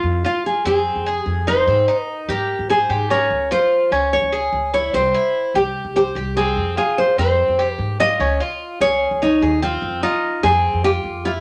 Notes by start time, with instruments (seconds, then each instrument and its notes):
Already playing: nylon-string guitar F4
0.03 upright bass F2
0.25 cuban tres F4, nylon-string guitar F4
0.46 nylon-string guitar G#4
0.65 upright bass F2, cuban tres C4, nylon-string guitar G#4
0.96 upright bass F2
1.06 cuban tres G#4
1.20 nylon-string guitar G4
1.26 upright bass F2
1.47 cuban tres D#4, nylon-string guitar C5
1.67 upright bass G#2, cuban tres C4
1.88 cuban tres D#4
2.04 nylon-string guitar A#4
2.28 upright bass G#2, cuban tres G4, nylon-string guitar A#4
2.59 upright bass G#2
2.70 nylon-string guitar G#4, cuban tres C5
2.89 upright bass G#2, cuban tres G4
3.10 cuban tres C#4, nylon-string guitar A#4
3.30 upright bass C#2
3.51 cuban tres F4, nylon-string guitar C5
3.91 upright bass C#2, cuban tres C#4
4.13 nylon-string guitar C#5
4.22 upright bass C#2
4.32 cuban tres G#4
4.53 upright bass C#2
4.74 cuban tres E4, nylon-string guitar C#5
4.93 upright bass C2, cuban tres C4, nylon-string guitar C5
5.14 cuban tres E4
5.54 upright bass C2, cuban tres G4, nylon-string guitar G4
5.85 upright bass C2
5.96 nylon-string guitar G4, cuban tres C5
6.15 upright bass C2, cuban tres G4
6.37 cuban tres C4, nylon-string guitar G#4
6.56 upright bass F2
6.77 cuban tres F4, nylon-string guitar G#4
6.98 nylon-string guitar C5
7.18 upright bass F2, cuban tres C4, nylon-string guitar C5
7.48 upright bass F2
7.59 cuban tres G4
7.75 upright bass G#2, nylon-string guitar A#4
8.00 cuban tres F4, nylon-string guitar D#5
8.20 upright bass C#2, cuban tres C#4
8.40 cuban tres F4
8.81 upright bass C#2, cuban tres G#4, nylon-string guitar C#5
9.11 upright bass C#2
9.22 nylon-string guitar D#4, cuban tres C#5
9.41 upright bass D#2, cuban tres G#4
9.62 cuban tres C4, nylon-string guitar F4
9.82 upright bass F2
10.03 cuban tres D#4, nylon-string guitar F4
10.43 upright bass F2, cuban tres C4, nylon-string guitar G#4
10.73 upright bass F2
10.84 cuban tres F4, nylon-string guitar G4
11.04 upright bass F2
11.25 cuban tres E4, nylon-string guitar F4